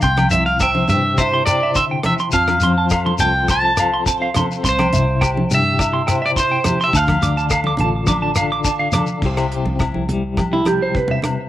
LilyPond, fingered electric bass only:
\new Staff \with { instrumentName = "Fingered electric bass" } { \clef bass \time 4/4 \key c \major \tempo 4 = 104 c,8 c,4 g,2 r8 | f,8 f,4 c,2 r8 | c,8 c,4 g,2 r8 | d,8 d,4 a,,2 r8 |
c,8. c,8 c,2 r8. | }